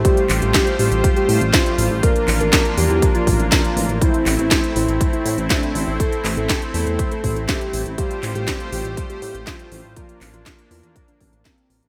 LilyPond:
<<
  \new Staff \with { instrumentName = "Soft synth lead" } { \time 4/4 \key a \phrygian \tempo 4 = 121 g'8 r16 g'8 r16 g'8 r16 g'8 r16 f'8. r16 | bes'8 r16 bes'8 r16 g'8 r16 f'8 r16 f'8. r16 | e'8 r16 e'8 r16 e'8 r16 e'8 r16 d'8. r16 | a'8 r16 a'8 r16 a'8 r16 a'8 r16 g'8. r16 |
g'8 r16 g'8 r16 g'8 r16 g'8 r16 f'8. r16 | f'8 r16 f'8 r16 f'8 r16 d'8 r16 c'8. r16 | }
  \new Staff \with { instrumentName = "Analog synth pad" } { \time 4/4 \key a \phrygian <a f' g' c''>1 | <bes d'>1 | <a c' e'>1~ | <a c' e'>1 |
<a f' g' c''>1 | <bes d'>1 | }
  \new Staff \with { instrumentName = "Analog polysynth" } { \time 4/4 \key a \phrygian <g c' f' c''>4. <g c' f' c''>2 <g c' f' c''>8 | <f bes d' bes'>4. <f bes d' bes'>2 <f bes d' bes'>8 | <a c' e' c''>4. <a c' e' c''>2 <a c' e' c''>8 | <a c' e' c''>4. <a c' e' c''>2~ <a c' e' c''>8 |
<g c' f' c''>4. <g c' f' c''>2 <g c' f' c''>8 | <f bes d' bes'>4. <f bes d' bes'>2 <f bes d' bes'>8 | }
  \new Staff \with { instrumentName = "Analog synth bass" } { \clef bass \time 4/4 \key a \phrygian r8 a,,16 a,,16 r8 a,,16 a,,16 r8 a,16 a,,16 r8 a,,16 a,,16 | r8 a,,16 a,,16 r8 e,16 e,16 r8 a,,16 a,,16 r8 a,,16 a,,16 | r8 a,,16 a,,16 r8 a,,16 a,,16 r8 a,16 a,,16 r8 a,,16 a,,16 | r8 a,,16 a,,16 r8 e,16 e,16 r8 a,,16 a,,16 r8 a,,16 a,,16 |
r8 a,,16 a,,16 r8 a,,16 a,,16 r8 a,16 a,,16 r8 a,,16 a,,16 | r8 a,,16 a,,16 r8 e,16 e,16 r8 a,,16 a,,16 r8 a,,16 a,,16 | }
  \new DrumStaff \with { instrumentName = "Drums" } \drummode { \time 4/4 <hh bd>16 hh16 <hc hho>16 hh16 <hc hh bd sn>16 hh16 hho16 hh16 <hh bd>16 hh16 hho16 hh16 <hc hh bd sn>16 hh16 hho8 | <hh bd>16 hh16 <hc hho>16 hh16 <hc hh bd sn>16 hh16 hho16 hh16 <hh bd>16 hh16 <hho bd>16 hh16 <hc hh bd sn>16 hh16 hho16 hh16 | <hh bd>16 hh16 <hc hho>16 hh16 <hc hh bd sn>16 hh16 hho16 hh16 <hh bd>16 hh16 hho16 hh16 <hc hh bd sn>16 hh16 hho8 | <hh bd>16 hh16 <hc hho>16 hh16 <hc hh bd sn>16 hh16 hho16 hh16 <hh bd>16 hh16 <hho bd>16 hh16 <hc hh bd sn>16 hh16 hho16 hh16 |
<hh bd>16 hh16 <hc hho>16 hh16 <hc hh bd sn>16 hh16 hho16 hh16 <hh bd>16 hh16 hho16 hh16 <hc hh bd sn>16 hh16 hho8 | <hh bd>16 hh16 <hc hho>16 hh16 <hc hh bd sn>16 hh16 hho16 hh16 <hh bd>16 hh16 <hho bd>16 hh16 <hc hh bd sn>16 hh16 hho16 hh16 | }
>>